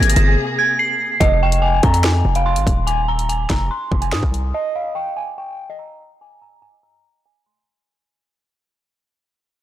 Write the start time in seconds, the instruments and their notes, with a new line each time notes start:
Already playing: string section C3 A#3 G#4, synth bell G#6
0.01 808-style bass G#1, closed hi-hat
0.10 closed hi-hat
0.16 808-style bass G1, synth bell A#6, closed hi-hat
0.59 synth bell G#6
0.79 synth bell C7
1.20 808-style bass F1, synth bell D#5, kick, closed hi-hat
1.43 synth bell G5
1.52 closed hi-hat
1.62 synth bell G#5
1.83 808-style bass F2, synth bell A#5, kick, closed hi-hat
1.94 closed hi-hat
2.04 synth bell G#5, snare
2.25 808-style bass F1
2.35 synth bell F5, closed hi-hat
2.46 synth bell C6
2.56 808-style bass G#1, closed hi-hat
2.67 808-style bass D#1, kick, closed hi-hat
2.87 synth bell G#5, closed hi-hat
3.08 synth bell A#5
3.19 closed hi-hat
3.29 synth bell G#5, closed hi-hat
3.50 808-style bass F1, synth bell A#5, kick, snare, closed hi-hat
3.71 synth bell C6
3.92 808-style bass F1, kick
4.02 synth bell G#5, closed hi-hat
4.12 808-style bass G#2, synth bell D#6, snare
4.23 808-style bass C2, kick
4.34 closed hi-hat
4.54 synth bell D#5
4.75 synth bell F5
4.95 synth bell G5
5.16 synth bell G#5
5.38 synth bell G5
5.70 synth bell D#5
5.79 synth bell A#5
6.21 synth bell G#5
6.42 synth bell A#5
6.62 synth bell G#5
7.25 synth bell G#5
7.46 synth bell C6